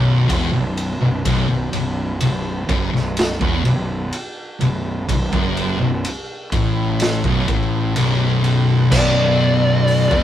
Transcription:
Already playing: B0 B1
0.29 E1 E2, kick, ride
0.53 B0 B1
0.77 ride
1.01 B0 B1
1.25 B0 B1, kick, ride
1.49 B0 B1
1.73 B0 B1, ride
2.21 B0 B1, ride
2.69 F#1 F#2, kick, ride
2.93 B0 B1, snare
3.17 snare, ride
3.41 E1 E2, kick
3.65 B0 B1, ride
4.13 ride
4.61 B0 B1, ride
5.08 B0 B1, kick, ride
5.33 F#1 F#2, kick
5.57 ride
5.80 B0 B1
6.05 ride
6.52 A1 A2, kick, ride
7.00 snare, ride
7.24 B0 B1, kick
7.48 A1 A2, kick, ride
7.96 B0 B1, ride
8.44 ride
8.91 B0 B1 D5, kick, crash
9.87 open hi-hat
10.11 E1 E2, kick

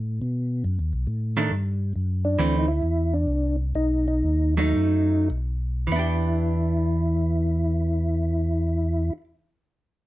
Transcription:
Already playing: A2
0.22 B2
0.64 F#2
0.79 D#2
0.93 B1
1.07 A2
1.37 D#3 A3 D4
1.51 G2
1.96 F#2
2.25 D4
2.38 D2 E3 A3 C4
2.59 D#4
2.68 E4
2.82 E2
3.14 D4
3.27 C2
3.75 B1 D#4
4.08 D#4
4.24 D#2
4.57 F#3 A3 D#4
4.76 F#2
5.30 B1
5.87 E2 E3
5.92 B3 D4 E4
5.99 G4

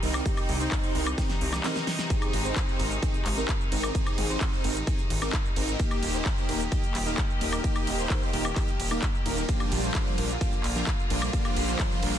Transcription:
Already playing: C3 D#3 G3 D#4
0.03 C2 C4 D#4 A#4, open hi-hat
0.14 closed hi-hat, high woodblock, shaker
0.25 C4 G4, kick, closed hi-hat, shaker
0.37 closed hi-hat, high woodblock, shaker
0.49 C2, open hi-hat
0.60 C4 D#4 C5, closed hi-hat, shaker
0.72 kick, clap, closed hi-hat, shaker
0.84 closed hi-hat, shaker
0.95 C2 C4 D#4 A#4, open hi-hat
1.07 closed hi-hat, high woodblock, shaker
1.18 C4 D#4 G4, kick, snare, closed hi-hat, shaker
1.30 snare, closed hi-hat, shaker
1.41 C2, open hi-hat
1.53 snare, closed hi-hat, high woodblock, shaker
1.64 C4 D#4 A#4, snare, clap, closed hi-hat, shaker
1.76 snare, closed hi-hat, shaker
1.87 snare, open hi-hat
1.99 snare, closed hi-hat, shaker
2.10 G#3 C4 D#4 G#4, kick, closed hi-hat, ride, shaker
2.22 closed hi-hat, high woodblock, shaker
2.33 G#1, open hi-hat, ride
2.45 C4 D#4 C5, closed hi-hat, shaker
2.56 kick, clap, closed hi-hat, ride, shaker
2.69 shaker
2.79 G#1 C4 D#4 A#4, open hi-hat, ride
2.91 closed hi-hat, shaker
3.02 C4 D#4 G#4, kick, closed hi-hat, ride, shaker
3.14 closed hi-hat, shaker
3.25 G#1, clap, open hi-hat, ride
3.37 C4 D#4 A#4, closed hi-hat, shaker
3.48 kick, clap, closed hi-hat, ride, shaker
3.61 shaker
3.72 G#1 C4 D#4 A#4, open hi-hat, ride
3.83 closed hi-hat, high woodblock, shaker
3.95 C4 D#4 G#4, kick, closed hi-hat, ride, shaker
4.06 closed hi-hat, high woodblock, shaker
4.18 G#1, open hi-hat, ride
4.30 C4 D#4 C5, closed hi-hat, shaker
4.41 kick, clap, closed hi-hat, ride, shaker
4.53 shaker
4.64 G#1 C4 D#4 A#4, open hi-hat, ride
4.76 closed hi-hat, shaker
4.87 C4 D#4 G#4, kick, closed hi-hat, ride, shaker
4.99 closed hi-hat, shaker
5.10 G#1, open hi-hat, ride
5.22 C4 D#4 A#4, closed hi-hat, high woodblock, shaker
5.33 kick, clap, closed hi-hat, ride, shaker
5.46 shaker
5.56 G#1 C4 D#4 A#4, open hi-hat, ride
5.68 closed hi-hat, shaker
5.79 D#3 A#3 D#4 G4, kick, closed hi-hat, ride, shaker
5.91 closed hi-hat, high woodblock, shaker
6.03 D#1, open hi-hat, ride
6.14 A#3 D#4 C5, closed hi-hat, shaker
6.25 kick, clap, closed hi-hat, ride, shaker
6.38 shaker
6.49 D#1 A#3 D#4 A#4, open hi-hat, ride
6.60 closed hi-hat, shaker
6.72 A#3 D#4 G4, kick, closed hi-hat, ride, shaker
6.83 closed hi-hat, shaker
6.95 D#1, clap, open hi-hat, ride
7.06 A#3 D#4 A#4, closed hi-hat, shaker
7.18 kick, clap, closed hi-hat, ride, shaker
7.30 shaker
7.41 D#1 A#3 D#4 A#4, open hi-hat, ride
7.53 closed hi-hat, high woodblock, shaker
7.64 A#3 D#4 G4, kick, closed hi-hat, ride, shaker
7.76 closed hi-hat, high woodblock, shaker
7.87 D#1, open hi-hat, ride
7.99 A#3 D#4 C5, closed hi-hat, shaker
8.10 kick, clap, closed hi-hat, ride, shaker
8.23 shaker
8.33 D#1 A#3 D#4 A#4, open hi-hat, ride
8.45 high woodblock, shaker
8.56 A#3 D#4 G4, kick, clap, closed hi-hat, ride, shaker
8.68 closed hi-hat, shaker
8.79 D#1, open hi-hat, ride
8.91 A#3 D#4 A#4, closed hi-hat, high woodblock, shaker
9.02 kick, clap, closed hi-hat, ride, shaker
9.15 shaker
9.26 D#1 A#3 D#4 A#4, open hi-hat, ride
9.37 closed hi-hat, shaker
9.49 D3 F3 G3 A#3 D4 F4 G4, kick, closed hi-hat, ride, shaker
9.60 closed hi-hat, high woodblock, shaker
9.72 A#1, open hi-hat, ride
9.83 F3 G3 A#3 D4 C5, closed hi-hat, shaker
9.95 kick, clap, closed hi-hat, ride, shaker
10.07 shaker
10.18 A#1 F3 G3 A#3 D4 A#4, open hi-hat, ride
10.30 closed hi-hat, shaker
10.41 F3 G3 A#3 D4 G4, kick, closed hi-hat, ride, shaker
10.53 closed hi-hat, shaker
10.64 A#1, clap, open hi-hat, ride
10.76 F3 G3 A#3 D4 A#4, closed hi-hat, shaker
10.87 kick, clap, closed hi-hat, ride, shaker
10.99 shaker
11.10 A#1 F3 G3 A#3 D4 A#4, open hi-hat, ride
11.22 closed hi-hat, high woodblock, shaker
11.33 F3 G3 A#3 D4 G4, kick, closed hi-hat, ride, shaker
11.45 closed hi-hat, high woodblock, shaker
11.56 A#1, open hi-hat, ride
11.68 F3 G3 A#3 D4 C5, closed hi-hat, shaker
11.79 kick, clap, closed hi-hat, ride, shaker
11.92 shaker
12.03 A#1 F3 G3 A#3 D4 A#4, open hi-hat, ride
12.14 closed hi-hat, shaker

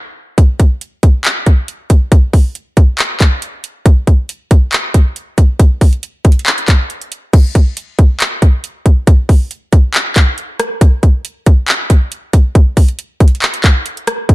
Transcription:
0.38 kick, closed hi-hat
0.60 kick, closed hi-hat
0.81 closed hi-hat
1.03 kick, closed hi-hat
1.25 clap, closed hi-hat
1.46 kick, closed hi-hat
1.68 closed hi-hat
1.90 kick, closed hi-hat
2.12 kick, closed hi-hat
2.33 kick, open hi-hat
2.55 closed hi-hat
2.77 kick, closed hi-hat
2.99 clap, closed hi-hat
3.20 kick, clap, closed hi-hat
3.42 closed hi-hat
3.64 closed hi-hat
3.86 kick, closed hi-hat
4.07 kick, closed hi-hat
4.29 closed hi-hat
4.51 kick, closed hi-hat
4.73 clap, closed hi-hat
4.94 kick, closed hi-hat
5.16 closed hi-hat
5.38 kick, closed hi-hat
5.59 kick, closed hi-hat
5.81 kick, closed hi-hat, open hi-hat
5.93 closed hi-hat
6.03 closed hi-hat
6.25 kick, closed hi-hat
6.32 closed hi-hat
6.39 closed hi-hat
6.46 clap, closed hi-hat
6.58 closed hi-hat
6.68 kick, clap, closed hi-hat
6.90 closed hi-hat
7.01 closed hi-hat
7.12 closed hi-hat
7.33 kick, closed hi-hat, crash
7.55 kick, closed hi-hat
7.77 closed hi-hat
7.99 kick, closed hi-hat
8.20 clap, closed hi-hat
8.42 kick, closed hi-hat
8.64 closed hi-hat
8.86 kick, closed hi-hat
9.07 kick, closed hi-hat
9.29 kick, open hi-hat
9.51 closed hi-hat
9.73 kick, closed hi-hat
9.94 clap, closed hi-hat
10.16 kick, clap, closed hi-hat
10.38 closed hi-hat
10.60 cross-stick, closed hi-hat
10.81 kick, closed hi-hat
11.03 kick, closed hi-hat
11.25 closed hi-hat
11.46 kick, closed hi-hat
11.68 clap, closed hi-hat
11.90 kick, closed hi-hat
12.12 closed hi-hat
12.33 kick, closed hi-hat
12.55 kick, closed hi-hat
12.77 kick, closed hi-hat, open hi-hat
12.89 closed hi-hat
12.99 closed hi-hat
13.20 kick, closed hi-hat
13.28 closed hi-hat
13.35 closed hi-hat
13.42 clap, closed hi-hat
13.54 closed hi-hat
13.64 kick, clap, closed hi-hat
13.86 closed hi-hat
13.97 closed hi-hat
14.07 cross-stick, closed hi-hat
14.29 kick, closed hi-hat

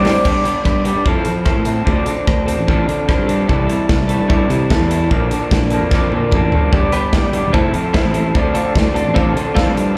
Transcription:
Already playing: C5 D5 G5 D6
0.02 G2 D3 G3 C4 D4 G4 C5, snare, open hi-hat
0.07 D5
0.24 G2 D3 G3 B3 D4 G4, kick, crash
0.44 G3 B3 D4 G4, closed hi-hat
0.65 G2, kick, cross-stick
0.84 G3 B3 D4 G4, closed hi-hat
0.96 G2
1.05 F2 F3 C4 E4 A4, kick
1.24 F3 C4 E4 A4, closed hi-hat
1.45 F3 C4 E4 A4, kick, cross-stick
1.56 A2
1.65 C4 E4 A4, closed hi-hat
1.85 D2 D3 F3 C4 D4 A4, kick
2.05 C4 D4 A4, closed hi-hat
2.27 D2, kick, cross-stick
2.46 C4 D4 A4, closed hi-hat
2.59 A1
2.67 D3 F3 C4 D4 A4, kick
2.86 D3 C4 D4 A4, closed hi-hat
3.07 F3 C4 D4 A4, kick, cross-stick
3.18 G2
3.27 C4 D4 A4, closed hi-hat
3.46 C2 C3 E3 G3 E4 A4, kick
3.67 G3 E4 A4, closed hi-hat
3.89 C2, kick, snare
4.08 G3 E4 A4, closed hi-hat
4.20 G2
4.28 C3 E3 G3 E4 A4, kick
4.48 C3 G3 E4 A4, closed hi-hat
4.69 E3 G3 E4 A4, kick, snare
4.79 E2
4.90 G3 E4 A4, closed hi-hat
5.10 A#1 A#2 D3 F3 A#3 D4 A4, kick
5.31 F3 A#3 D4 A4, closed hi-hat
5.51 A#1, kick, snare
5.70 F3 A#3 D4 A4, closed hi-hat
5.81 F2
5.91 A#2 D3 F3 A#3 D4, kick, snare
5.95 A4
6.11 A#2 A#3 D4 A4, high tom
6.16 F3
6.32 A1 F3 A#3 D4, kick, mid tom
6.36 A4
6.52 G1 F3 A#3 D4 A4, floor tom
6.71 G1 G2 D3 G3 B3 D4 G4 B4 D5 G5 D6, muted clean electric guitar stroke, kick
6.92 G3 B3 D4 G4 B4, closed hi-hat
7.13 G1, muted clean electric guitar stroke, kick, snare
7.33 G3 B3 D4 G4, muted clean electric guitar stroke, closed hi-hat
7.45 E1
7.52 F1 F3 A3 C4 E4 A4 E5 A5 C6, kick
7.73 F2 C4 E4 A4, muted clean electric guitar stroke, closed hi-hat
7.93 F3 A3 C4 E4 A4, kick, snare
8.04 A1
8.13 C4 E4 A4, muted clean electric guitar stroke, closed hi-hat
8.34 D2 D3 F3 C4 D4 A4 D5, muted clean electric guitar stroke, kick
8.53 A3 C4 D4 F4 A4, closed hi-hat
8.75 D2, muted clean electric guitar stroke, kick, snare
8.94 C4 D4 A4, muted clean electric guitar stroke, closed hi-hat
9.05 A1
9.14 D3 F3 A3 C4 D4 F4 A4, kick
9.34 D3 C4 D4 A4, muted clean electric guitar stroke, closed hi-hat
9.54 F3 A3 C4 D4 F4 A4, kick, snare
9.65 G2
9.75 C4 D4 A4, muted clean electric guitar stroke, closed hi-hat
9.95 muted clean electric guitar stroke

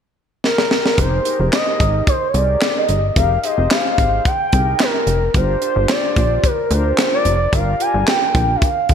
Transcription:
0.44 A#4, snare
0.58 snare
0.71 snare
0.86 snare
0.98 F1 D#4 G4 G#4 A#4 C5, kick, closed hi-hat
1.25 D#4 G4 G#4 A#4, closed hi-hat
1.40 F1
1.52 D#5, snare, clap, closed hi-hat
1.80 G#1, kick, closed hi-hat
2.07 C5, kick, closed hi-hat
2.28 C#5
2.34 C2 D#4 G4 G#4 A#4 D5, closed hi-hat
2.62 snare, clap, closed hi-hat
2.77 D#5
2.89 G1, closed hi-hat
3.16 F1 D#4 G4 G#4 A#4 F5, kick, closed hi-hat
3.43 D#4 G4 G#4 C5 D#5, closed hi-hat
3.58 F1
3.70 F5, snare, clap, closed hi-hat
3.98 G#1, kick, closed hi-hat
4.25 G5, kick, closed hi-hat
4.52 C2 D#4 G4 G#4 A#4, kick, closed hi-hat
4.80 A#4, snare, clap, closed hi-hat
5.07 F1, closed hi-hat
5.34 G1 D4 F4 G4 A#4 C5, kick, closed hi-hat
5.61 D4 F4 G4 C5, closed hi-hat
5.76 G1
5.89 D5, snare, clap, closed hi-hat
6.16 A#1, kick, closed hi-hat
6.44 A#4, kick, closed hi-hat
6.70 D2 D4 F4 G4 A#4 C5, closed hi-hat
6.98 snare, clap, closed hi-hat
7.14 D5
7.25 F1, closed hi-hat
7.52 G1 D4 F4 G4 A#4 F5, kick, closed hi-hat
7.79 D4 F4 G4 A#4 G#5, closed hi-hat
7.94 G1
8.07 G5, snare, clap, closed hi-hat
8.35 A#1, kick, closed hi-hat
8.56 E5
8.62 F5, kick, closed hi-hat
8.88 D2 D4 F4 G4 C5, kick, closed hi-hat

